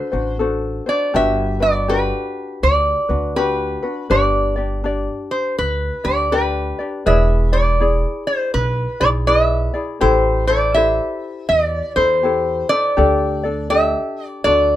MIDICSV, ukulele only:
0, 0, Header, 1, 2, 480
1, 0, Start_track
1, 0, Key_signature, 1, "major"
1, 0, Tempo, 739827
1, 738, Time_signature, 4, 2, 24, 8
1, 9578, End_track
2, 0, Start_track
2, 0, Title_t, "Ukulele"
2, 0, Program_c, 0, 24
2, 0, Note_on_c, 0, 62, 69
2, 0, Note_on_c, 0, 66, 74
2, 0, Note_on_c, 0, 69, 69
2, 0, Note_on_c, 0, 72, 76
2, 68, Note_off_c, 0, 72, 0
2, 75, Note_off_c, 0, 66, 0
2, 76, Note_on_c, 0, 72, 57
2, 77, Note_off_c, 0, 69, 0
2, 79, Note_off_c, 0, 62, 0
2, 83, Note_on_c, 0, 66, 48
2, 91, Note_on_c, 0, 62, 40
2, 251, Note_off_c, 0, 62, 0
2, 254, Note_on_c, 0, 69, 57
2, 255, Note_off_c, 0, 72, 0
2, 256, Note_off_c, 0, 66, 0
2, 258, Note_on_c, 0, 62, 55
2, 264, Note_on_c, 0, 66, 59
2, 266, Note_on_c, 0, 72, 57
2, 551, Note_off_c, 0, 72, 0
2, 558, Note_off_c, 0, 69, 0
2, 559, Note_off_c, 0, 66, 0
2, 559, Note_on_c, 0, 72, 50
2, 560, Note_off_c, 0, 62, 0
2, 566, Note_on_c, 0, 66, 42
2, 572, Note_on_c, 0, 62, 40
2, 735, Note_off_c, 0, 62, 0
2, 737, Note_off_c, 0, 66, 0
2, 737, Note_off_c, 0, 72, 0
2, 739, Note_on_c, 0, 67, 75
2, 743, Note_on_c, 0, 62, 81
2, 744, Note_on_c, 0, 66, 80
2, 748, Note_on_c, 0, 71, 85
2, 1031, Note_off_c, 0, 71, 0
2, 1039, Note_on_c, 0, 71, 55
2, 1040, Note_off_c, 0, 66, 0
2, 1041, Note_off_c, 0, 67, 0
2, 1043, Note_off_c, 0, 62, 0
2, 1047, Note_on_c, 0, 66, 51
2, 1052, Note_on_c, 0, 62, 41
2, 1218, Note_off_c, 0, 71, 0
2, 1220, Note_off_c, 0, 62, 0
2, 1221, Note_on_c, 0, 67, 58
2, 1222, Note_off_c, 0, 66, 0
2, 1228, Note_on_c, 0, 62, 58
2, 1231, Note_on_c, 0, 66, 58
2, 1236, Note_on_c, 0, 71, 65
2, 2000, Note_off_c, 0, 67, 0
2, 2002, Note_off_c, 0, 71, 0
2, 2002, Note_on_c, 0, 71, 53
2, 2004, Note_off_c, 0, 66, 0
2, 2012, Note_off_c, 0, 62, 0
2, 2012, Note_on_c, 0, 66, 46
2, 2015, Note_on_c, 0, 62, 43
2, 2180, Note_off_c, 0, 62, 0
2, 2180, Note_off_c, 0, 71, 0
2, 2182, Note_on_c, 0, 67, 57
2, 2185, Note_off_c, 0, 66, 0
2, 2187, Note_on_c, 0, 62, 57
2, 2192, Note_on_c, 0, 66, 61
2, 2198, Note_on_c, 0, 71, 59
2, 2474, Note_off_c, 0, 71, 0
2, 2481, Note_off_c, 0, 66, 0
2, 2482, Note_on_c, 0, 71, 46
2, 2484, Note_off_c, 0, 67, 0
2, 2486, Note_off_c, 0, 62, 0
2, 2489, Note_on_c, 0, 66, 43
2, 2494, Note_on_c, 0, 62, 39
2, 2650, Note_off_c, 0, 71, 0
2, 2656, Note_off_c, 0, 62, 0
2, 2658, Note_on_c, 0, 71, 70
2, 2664, Note_off_c, 0, 66, 0
2, 2664, Note_on_c, 0, 62, 76
2, 2666, Note_on_c, 0, 67, 73
2, 2668, Note_on_c, 0, 74, 76
2, 2950, Note_off_c, 0, 74, 0
2, 2957, Note_on_c, 0, 74, 55
2, 2959, Note_off_c, 0, 67, 0
2, 2961, Note_off_c, 0, 71, 0
2, 2965, Note_off_c, 0, 62, 0
2, 2967, Note_on_c, 0, 67, 48
2, 2974, Note_on_c, 0, 62, 40
2, 3131, Note_off_c, 0, 62, 0
2, 3137, Note_off_c, 0, 67, 0
2, 3138, Note_off_c, 0, 74, 0
2, 3139, Note_on_c, 0, 62, 66
2, 3145, Note_on_c, 0, 67, 64
2, 3151, Note_on_c, 0, 74, 64
2, 3917, Note_off_c, 0, 67, 0
2, 3918, Note_off_c, 0, 74, 0
2, 3918, Note_on_c, 0, 74, 54
2, 3925, Note_on_c, 0, 67, 47
2, 3928, Note_off_c, 0, 62, 0
2, 3931, Note_on_c, 0, 62, 43
2, 4094, Note_off_c, 0, 62, 0
2, 4095, Note_off_c, 0, 67, 0
2, 4098, Note_off_c, 0, 74, 0
2, 4098, Note_on_c, 0, 71, 55
2, 4102, Note_on_c, 0, 62, 55
2, 4107, Note_on_c, 0, 67, 61
2, 4110, Note_on_c, 0, 74, 59
2, 4396, Note_off_c, 0, 74, 0
2, 4401, Note_off_c, 0, 71, 0
2, 4403, Note_off_c, 0, 62, 0
2, 4404, Note_off_c, 0, 67, 0
2, 4404, Note_on_c, 0, 74, 52
2, 4412, Note_on_c, 0, 67, 47
2, 4416, Note_on_c, 0, 62, 43
2, 4580, Note_on_c, 0, 71, 80
2, 4581, Note_off_c, 0, 74, 0
2, 4582, Note_off_c, 0, 62, 0
2, 4583, Note_off_c, 0, 67, 0
2, 4584, Note_on_c, 0, 64, 72
2, 4586, Note_on_c, 0, 68, 80
2, 4588, Note_on_c, 0, 74, 86
2, 4874, Note_off_c, 0, 74, 0
2, 4882, Note_off_c, 0, 68, 0
2, 4882, Note_on_c, 0, 74, 53
2, 4883, Note_off_c, 0, 71, 0
2, 4884, Note_off_c, 0, 64, 0
2, 4889, Note_on_c, 0, 68, 48
2, 4894, Note_on_c, 0, 64, 43
2, 5054, Note_off_c, 0, 64, 0
2, 5060, Note_off_c, 0, 74, 0
2, 5062, Note_off_c, 0, 68, 0
2, 5062, Note_on_c, 0, 64, 59
2, 5070, Note_on_c, 0, 68, 61
2, 5070, Note_on_c, 0, 74, 66
2, 5833, Note_off_c, 0, 74, 0
2, 5838, Note_off_c, 0, 68, 0
2, 5841, Note_on_c, 0, 74, 54
2, 5846, Note_on_c, 0, 68, 49
2, 5850, Note_off_c, 0, 64, 0
2, 5853, Note_on_c, 0, 64, 44
2, 6011, Note_off_c, 0, 64, 0
2, 6015, Note_on_c, 0, 71, 58
2, 6016, Note_off_c, 0, 68, 0
2, 6019, Note_off_c, 0, 74, 0
2, 6019, Note_on_c, 0, 64, 59
2, 6023, Note_on_c, 0, 68, 55
2, 6028, Note_on_c, 0, 74, 63
2, 6309, Note_off_c, 0, 74, 0
2, 6314, Note_off_c, 0, 68, 0
2, 6317, Note_on_c, 0, 74, 50
2, 6320, Note_off_c, 0, 71, 0
2, 6322, Note_off_c, 0, 64, 0
2, 6322, Note_on_c, 0, 68, 48
2, 6328, Note_on_c, 0, 64, 42
2, 6488, Note_off_c, 0, 64, 0
2, 6492, Note_on_c, 0, 67, 77
2, 6496, Note_off_c, 0, 68, 0
2, 6496, Note_on_c, 0, 64, 83
2, 6497, Note_off_c, 0, 74, 0
2, 6499, Note_on_c, 0, 69, 85
2, 6501, Note_on_c, 0, 72, 79
2, 6792, Note_off_c, 0, 72, 0
2, 6797, Note_off_c, 0, 67, 0
2, 6800, Note_off_c, 0, 64, 0
2, 6800, Note_on_c, 0, 72, 54
2, 6801, Note_off_c, 0, 69, 0
2, 6808, Note_on_c, 0, 69, 53
2, 6811, Note_on_c, 0, 64, 45
2, 6972, Note_off_c, 0, 64, 0
2, 6975, Note_on_c, 0, 67, 58
2, 6976, Note_off_c, 0, 69, 0
2, 6978, Note_off_c, 0, 72, 0
2, 6980, Note_on_c, 0, 64, 66
2, 6984, Note_on_c, 0, 69, 61
2, 6991, Note_on_c, 0, 72, 69
2, 7750, Note_off_c, 0, 72, 0
2, 7757, Note_on_c, 0, 72, 55
2, 7761, Note_off_c, 0, 64, 0
2, 7763, Note_off_c, 0, 67, 0
2, 7765, Note_off_c, 0, 69, 0
2, 7765, Note_on_c, 0, 69, 49
2, 7771, Note_on_c, 0, 64, 45
2, 7932, Note_off_c, 0, 64, 0
2, 7933, Note_off_c, 0, 72, 0
2, 7935, Note_on_c, 0, 67, 59
2, 7938, Note_off_c, 0, 69, 0
2, 7940, Note_on_c, 0, 64, 55
2, 7946, Note_on_c, 0, 69, 57
2, 7948, Note_on_c, 0, 72, 59
2, 8229, Note_off_c, 0, 72, 0
2, 8234, Note_off_c, 0, 67, 0
2, 8235, Note_off_c, 0, 69, 0
2, 8237, Note_on_c, 0, 72, 48
2, 8241, Note_off_c, 0, 64, 0
2, 8243, Note_on_c, 0, 69, 45
2, 8250, Note_on_c, 0, 64, 42
2, 8411, Note_off_c, 0, 72, 0
2, 8412, Note_off_c, 0, 69, 0
2, 8414, Note_on_c, 0, 67, 81
2, 8415, Note_on_c, 0, 62, 74
2, 8417, Note_off_c, 0, 64, 0
2, 8420, Note_on_c, 0, 69, 75
2, 8420, Note_on_c, 0, 74, 78
2, 8708, Note_off_c, 0, 74, 0
2, 8715, Note_off_c, 0, 69, 0
2, 8716, Note_on_c, 0, 74, 49
2, 8717, Note_off_c, 0, 67, 0
2, 8718, Note_off_c, 0, 62, 0
2, 8723, Note_on_c, 0, 69, 50
2, 8731, Note_on_c, 0, 62, 45
2, 8885, Note_off_c, 0, 62, 0
2, 8888, Note_off_c, 0, 69, 0
2, 8888, Note_on_c, 0, 67, 60
2, 8892, Note_off_c, 0, 74, 0
2, 8893, Note_on_c, 0, 62, 57
2, 8896, Note_on_c, 0, 69, 66
2, 8900, Note_on_c, 0, 74, 65
2, 9372, Note_off_c, 0, 67, 0
2, 9375, Note_off_c, 0, 69, 0
2, 9375, Note_on_c, 0, 69, 64
2, 9376, Note_off_c, 0, 62, 0
2, 9379, Note_on_c, 0, 62, 70
2, 9383, Note_off_c, 0, 74, 0
2, 9384, Note_on_c, 0, 66, 74
2, 9386, Note_on_c, 0, 74, 72
2, 9578, Note_off_c, 0, 62, 0
2, 9578, Note_off_c, 0, 66, 0
2, 9578, Note_off_c, 0, 69, 0
2, 9578, Note_off_c, 0, 74, 0
2, 9578, End_track
0, 0, End_of_file